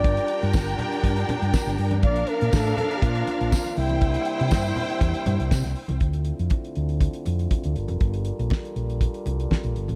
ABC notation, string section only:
X:1
M:4/4
L:1/8
Q:1/4=120
K:Gdor
V:1 name="String section"
[DBg]8 | [DBf]6- [DBf] [Ecg]- | [Ecg]8 | z8 |
z8 |]